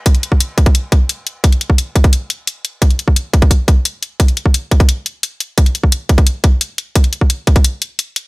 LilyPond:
\new DrumStaff \with { instrumentName = "Drums" } \drummode { \time 4/4 \tempo 4 = 174 <hh bd>16 hh16 hh16 bd16 hh8 <hh bd>16 <hh bd>16 hh8 <hh bd>8 hh8 hh8 | <hh bd>16 hh16 hh16 bd16 hh8 <hh bd>16 <hh bd>16 hh8 hh8 hh8 hh8 | <hh bd>16 hh16 hh16 bd16 hh8 <hh bd>16 <hh bd>16 <hh bd>8 <hh bd>8 hh8 hh8 | <hh bd>16 hh16 hh16 bd16 hh8 <hh bd>16 <hh bd>16 hh8 hh8 hh8 hh8 |
<hh bd>16 hh16 hh16 bd16 hh8 <hh bd>16 <hh bd>16 hh8 <hh bd>8 hh8 hh8 | <hh bd>16 hh16 hh16 bd16 hh8 <hh bd>16 <hh bd>16 hh8 hh8 hh8 hh8 | }